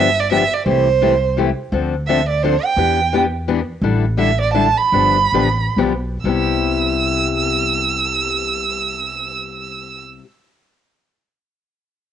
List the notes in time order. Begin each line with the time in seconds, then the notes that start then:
Already playing: G1 E5
0.20 D5
0.31 D3 F3 B3 D4 G4 E5
0.54 D5
0.66 C2 C3 E3 A3 E4 G4 C5
1.02 C3 E3 A3 E4 G4
1.37 C3 E3 A3 E4 G4
1.72 D2 D3 F3 C4 D4 A4
2.07 D3 F3 C4 D4 A4 E5
2.29 D5
2.43 D3 F3 C4 D4 A4 C5
2.65 G5
2.77 E2 E3 B3 D4 G4
3.13 E3 B3 D4 G4
3.48 E3 B3 D4 G4
3.82 A1 D3 G3 D4 E4 A4
4.17 D3 G3 D4 E4 A4 E5
4.41 D5
4.54 D3 G3 D4 E4 A4 A5
4.77 B5
4.92 G1 D3 F3 B3 D4 G4
5.32 A1 D3 F3 B3 D4 G4
5.76 B1 D3 F3 B3 D4 G4
6.24 C2 C3 G3 B3 E4 G4 E6